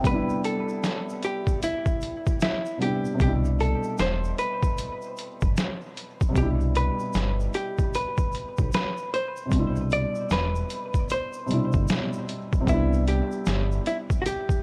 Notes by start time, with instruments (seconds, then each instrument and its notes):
0.01 felt piano C3 G3, kick
0.05 felt piano B3, hollow-body jazz guitar B4, closed hi-hat, shaker
0.11 felt piano D4 E4
0.30 shaker
0.44 hollow-body jazz guitar A4, closed hi-hat, shaker
0.69 shaker
0.83 snare, closed hi-hat, shaker
1.09 shaker
1.23 hollow-body jazz guitar G4, closed hi-hat, shaker
1.47 kick, shaker
1.63 hollow-body jazz guitar E4, closed hi-hat, shaker
1.86 kick, shaker
2.01 closed hi-hat, shaker
2.26 kick, shaker
2.40 hollow-body jazz guitar E4, snare, closed hi-hat, shaker
2.65 shaker
2.77 felt piano C3 G3 B3
2.81 felt piano D4 E4, hollow-body jazz guitar G4, closed hi-hat
3.05 shaker
3.14 felt piano C3 G3
3.20 analog synth bass C2, felt piano B2, hollow-body jazz guitar G4, kick, closed hi-hat, shaker
3.25 felt piano D4 E4
3.45 shaker
3.59 hollow-body jazz guitar A4, closed hi-hat, shaker
3.83 shaker
3.98 analog synth bass E1, hollow-body jazz guitar C5, snare, closed hi-hat, shaker
4.24 shaker
4.38 hollow-body jazz guitar B4, closed hi-hat, shaker
4.63 kick, shaker
4.78 closed hi-hat, shaker
5.02 shaker
5.17 closed hi-hat, shaker
5.41 analog synth bass G1, kick, shaker
5.57 snare, closed hi-hat, shaker
5.81 shaker
5.97 closed hi-hat
6.21 kick, shaker
6.29 felt piano C3 G3
6.36 analog synth bass C2, felt piano B2 D4, hollow-body jazz guitar G4, kick, closed hi-hat, shaker
6.42 felt piano E4
6.61 shaker
6.75 hollow-body jazz guitar B4, closed hi-hat, shaker
6.99 shaker
7.13 analog synth bass G1, snare, closed hi-hat, shaker
7.40 shaker
7.53 hollow-body jazz guitar G4, closed hi-hat, shaker
7.78 kick, shaker
7.94 hollow-body jazz guitar B4, closed hi-hat, shaker
8.17 kick, shaker
8.32 closed hi-hat, shaker
8.57 analog synth bass B1, kick, shaker
8.72 hollow-body jazz guitar B4, snare, closed hi-hat, shaker
8.97 shaker
9.14 hollow-body jazz guitar C5, closed hi-hat
9.36 shaker
9.46 felt piano C3 G3
9.51 analog synth bass C2, felt piano B2, kick, closed hi-hat, shaker
9.56 felt piano D4 E4
9.76 shaker
9.90 hollow-body jazz guitar D5, closed hi-hat, shaker
10.15 shaker
10.30 analog synth bass E1, hollow-body jazz guitar B4, snare, closed hi-hat, shaker
10.56 shaker
10.70 closed hi-hat, shaker
10.94 kick, shaker
11.09 hollow-body jazz guitar C5, closed hi-hat, shaker
11.33 shaker
11.46 felt piano B2 C3 G3, shaker
11.51 felt piano D4 E4, closed hi-hat
11.72 analog synth bass G1, kick, shaker
11.88 snare, closed hi-hat, shaker
12.13 shaker
12.29 closed hi-hat
12.53 kick, shaker
12.61 felt piano C3 G3
12.67 analog synth bass C2, felt piano B3 D4, hollow-body jazz guitar E4, kick, closed hi-hat, shaker
12.74 felt piano E4
12.93 shaker
13.07 hollow-body jazz guitar G4, closed hi-hat, shaker
13.32 shaker
13.46 analog synth bass G1, snare, closed hi-hat, shaker
13.72 shaker
13.86 hollow-body jazz guitar E4, closed hi-hat, shaker
14.10 kick, shaker
14.22 hollow-body jazz guitar F#4
14.26 hollow-body jazz guitar G4, closed hi-hat, shaker
14.49 kick, shaker